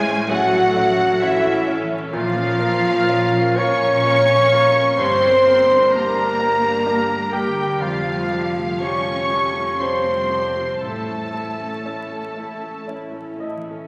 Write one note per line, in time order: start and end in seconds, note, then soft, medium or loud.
0.00 2.14 A1 medium
0.00 2.16 A2 medium
0.00 2.17 A2 medium
0.00 0.30 G#3 loud
0.00 0.27 C#4 medium
0.00 0.28 C#4 medium
0.00 2.17 C#4 medium
0.00 0.27 E4 medium
0.00 0.31 G#4 loud
0.00 0.26 C5 medium
0.00 2.75 C#5 medium
0.00 0.30 G#5 medium
0.00 0.31 G#5 medium
0.29 1.22 F#3 medium
0.29 1.22 A3 medium
0.29 0.72 C#4 soft
0.29 0.73 E4 medium
0.29 1.22 F#4 loud
0.29 1.25 F#4 medium
0.29 0.89 A4 medium
0.29 1.19 A4 medium
0.29 1.23 F#5 medium
0.29 1.22 F#5 medium
0.29 1.21 F#5 medium
0.60 2.17 E5 medium
0.76 1.18 C#4 medium
0.76 1.18 E4 medium
0.90 2.17 A4 medium
1.20 1.68 E3 medium
1.20 2.11 C#4 medium
1.20 1.64 C#4 medium
1.20 2.17 E4 medium
1.20 1.64 E4 medium
1.20 1.68 E4 medium
1.20 1.69 E4 medium
1.20 2.11 A4 medium
1.20 1.68 E5 medium
1.20 1.69 E5 medium
1.52 2.17 A3 medium
1.67 2.09 C#4 medium
1.67 2.10 E4 medium
1.83 2.17 E3 medium
2.13 4.94 A#1 medium
2.13 2.58 A#2 medium
2.13 5.01 A#2 medium
2.13 3.54 F3 medium
2.13 2.35 A#3 medium
2.13 2.35 F4 medium
2.13 3.59 F4 medium
2.13 3.54 F4 loud
2.13 3.60 F5 medium
2.13 3.54 F5 medium
2.13 3.55 F5 medium
2.37 2.60 C#4 medium
2.37 2.60 A#4 medium
2.45 4.35 F3 soft
2.59 2.84 A#3 medium
2.59 3.04 F4 medium
2.59 2.84 F4 medium
2.59 3.04 A#4 medium
2.76 3.40 C#5 medium
2.85 3.09 C#4 medium
2.85 3.09 A#4 medium
3.09 3.32 A#3 medium
3.09 3.54 C#4 soft
3.09 3.54 F4 soft
3.09 3.32 F4 medium
3.09 3.54 A#4 medium
3.34 3.58 C#4 medium
3.34 3.58 A#4 medium
3.41 5.02 C#5 medium
3.57 3.82 A#3 medium
3.57 4.98 C#4 medium
3.57 3.82 F4 medium
3.57 4.01 F4 medium
3.57 4.01 A#4 medium
3.57 4.98 C#5 loud
3.57 4.97 C#5 medium
3.57 4.98 C#6 medium
3.57 4.99 C#6 medium
3.74 5.02 F4 medium
3.82 4.05 C#4 medium
3.82 4.05 A#4 medium
4.05 4.27 A#3 medium
4.05 5.02 C#4 medium
4.05 4.47 C#4 soft
4.05 4.27 F4 medium
4.05 4.48 F4 soft
4.05 4.48 A#4 medium
4.29 4.52 C#4 medium
4.29 4.52 A#4 medium
4.36 5.02 F3 soft
4.52 4.75 A#3 medium
4.52 4.94 F4 medium
4.52 4.75 F4 medium
4.52 4.95 A#4 medium
4.67 7.84 A#3 soft
4.75 4.98 C#4 medium
4.75 4.98 A#4 medium
4.97 7.76 G1 medium
4.97 7.84 G2 medium
4.97 5.44 G2 medium
4.97 5.20 A#3 medium
4.97 5.91 C4 medium
4.97 5.20 G4 medium
4.97 5.90 C5 loud
4.97 5.94 C5 medium
4.97 5.90 C6 medium
4.97 5.95 C6 medium
4.97 5.91 C6 medium
5.23 5.46 D4 medium
5.23 5.46 A#4 medium
5.45 5.69 A#3 medium
5.45 5.69 G4 medium
5.45 5.89 G4 soft
5.45 5.89 A#4 soft
5.61 7.84 A#4 medium
5.70 5.93 D4 soft
5.70 5.93 A#4 soft
5.92 7.33 A#3 medium
5.92 6.14 A#3 medium
5.92 6.35 D4 soft
5.92 6.52 G4 soft
5.92 6.15 G4 medium
5.92 6.36 G4 soft
5.92 7.35 A#4 medium
5.92 7.33 A#4 medium
5.92 6.36 A#4 soft
5.92 7.30 A#5 medium
5.92 7.33 A#5 medium
5.92 7.32 A#5 medium
6.17 6.39 D4 soft
6.17 6.39 A#4 soft
6.24 7.84 D5 soft
6.39 6.62 A#3 soft
6.39 6.82 G4 soft
6.39 6.62 G4 medium
6.39 6.82 A#4 soft
6.53 8.80 G4 soft
6.63 6.86 D4 soft
6.63 6.86 A#4 soft
6.85 7.08 A#3 soft
6.85 7.84 D4 soft
6.85 7.29 D4 soft
6.85 7.29 G4 soft
6.85 7.08 G4 soft
6.85 7.29 A#4 soft
7.09 7.33 D4 soft
7.09 7.33 A#4 soft
7.16 8.12 G3 soft
7.32 7.80 G3 medium
7.32 7.56 A#3 soft
7.32 7.80 G4 medium
7.32 7.76 G4 soft
7.32 7.56 G4 soft
7.32 7.82 G4 medium
7.32 7.77 A#4 soft
7.32 7.79 G5 medium
7.32 7.83 G5 medium
7.32 7.80 G5 medium
7.48 7.84 D3 soft
7.56 7.80 D4 soft
7.56 7.80 A#4 soft
7.79 10.78 F1 medium
7.79 10.85 F2 medium
7.79 8.29 F2 soft
7.79 8.82 F3 medium
7.79 8.03 G3 soft
7.79 8.79 F4 medium
7.79 8.52 F4 medium
7.79 8.03 G4 soft
7.79 8.81 F5 medium
7.79 8.79 F5 medium
7.79 8.53 F5 medium
8.03 8.30 A3 soft
8.03 8.30 F4 soft
8.13 10.13 G3 soft
8.30 8.56 G3 soft
8.30 8.77 G4 soft
8.30 8.56 G4 soft
8.30 8.78 A4 soft
8.47 11.83 A4 soft
8.56 8.82 A3 soft
8.56 8.82 F4 soft
8.81 9.04 G3 soft
8.81 9.77 C#4 medium
8.81 9.27 F4 soft
8.81 9.45 G4 soft
8.81 9.05 G4 soft
8.81 9.27 G4 soft
8.81 9.27 A4 soft
8.81 9.82 C#5 medium
8.81 9.80 C#5 medium
8.81 9.79 C#6 medium
8.81 9.82 C#6 medium
8.81 9.79 C#6 medium
9.07 9.31 A3 soft
9.07 9.31 F4 soft
9.14 10.85 F5 soft
9.30 9.55 G3 soft
9.30 9.75 G4 soft
9.30 9.55 G4 soft
9.30 9.75 A4 soft
9.46 10.85 G4 soft
9.55 9.79 A3 soft
9.55 9.80 F4 soft
9.79 10.03 G3 soft
9.79 10.82 C4 soft
9.79 10.86 F4 soft
9.79 10.26 F4 soft
9.79 10.03 G4 soft
9.79 10.26 G4 soft
9.79 10.27 A4 soft
9.79 10.80 C5 soft
9.79 10.82 C5 medium
9.79 10.81 C6 soft
9.79 10.83 C6 soft
10.04 10.30 A3 soft
10.04 10.30 F4 soft
10.14 10.86 G3 soft
10.29 10.56 G3 soft
10.29 10.55 G4 soft
10.29 10.78 G4 soft
10.29 10.78 A4 soft
10.48 10.86 C3 soft
10.56 10.80 A3 soft
10.56 10.82 F4 soft
10.80 13.65 A1 soft
10.80 11.32 A2 soft
10.80 13.87 A2 soft
10.80 11.05 A3 soft
10.80 12.84 A3 soft
10.80 11.06 E4 soft
10.80 12.83 A4 soft
10.80 12.83 A5 soft
10.80 12.87 A5 soft
10.80 12.84 A5 soft
10.85 12.89 A4 medium
11.08 11.34 C#4 soft
11.08 11.33 A4 soft
11.17 13.20 A3 soft
11.33 11.59 A3 soft
11.33 11.59 E4 soft
11.33 11.81 E4 soft
11.33 11.81 A4 soft
11.51 13.87 C#5 soft
11.58 11.84 C#4 soft
11.58 11.84 A4 soft
11.84 12.08 A3 soft
11.84 12.32 C#4 soft
11.84 12.09 E4 soft
11.84 12.33 E4 soft
11.84 12.52 A4 soft
11.84 12.33 A4 soft
12.10 12.36 C#4 soft
12.10 12.36 A4 soft
12.36 12.62 A3 soft
12.36 12.62 E4 soft
12.36 12.84 E4 soft
12.36 12.84 A4 soft
12.53 13.87 A4 soft
12.62 12.87 C#4 soft
12.62 12.88 A4 soft
12.87 13.12 A3 soft
12.87 13.35 C#4 soft
12.87 13.87 E4 soft
12.87 13.36 E4 soft
12.87 13.12 E4 soft
12.87 13.36 A4 soft
13.14 13.40 C#4 soft
13.14 13.40 A4 soft
13.22 13.87 A3 soft
13.40 13.66 A3 soft
13.40 13.87 E4 soft
13.40 13.65 E4 soft
13.40 13.87 A4 soft
13.40 13.87 D#5 soft
13.56 13.87 E3 soft
13.66 13.87 C#4 soft
13.66 13.87 A4 soft